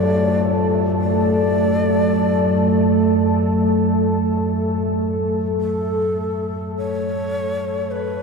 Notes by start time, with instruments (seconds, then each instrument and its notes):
Already playing: synth drone F#2 F#3, ambient pad A3 A4 A5, singing bowl F4, shakuhachi D5
1.01 shakuhachi D5
5.61 shakuhachi A4
6.77 shakuhachi C#5
7.03 ambient pad F5
7.91 shakuhachi B4